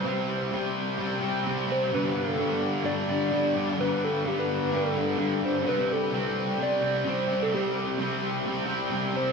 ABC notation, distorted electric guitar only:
X:1
M:4/4
L:1/8
Q:1/4=129
K:Clyd
V:1 name="Distorted electric guitar" clef=bass
[C,G,C]2 [C,G,C]2 [C,G,C] [G,C] [C,G,C] [G,C] | [G,,D,G,]2 [G,,D,G,]2 [G,,D,G,] [D,G,] [G,,D,G,] [D,G,] | [G,,D,G,]2 [G,,D,G,]2 [G,,D,G,] [D,G,] [G,,D,G,] [D,G,] | [C,G,C]2 [C,G,C]2 [C,G,C] [G,C] [C,G,C] [G,C] |
[C,G,C]2 [C,G,C]2 [C,G,C] [G,C] [C,G,C] [G,C] |]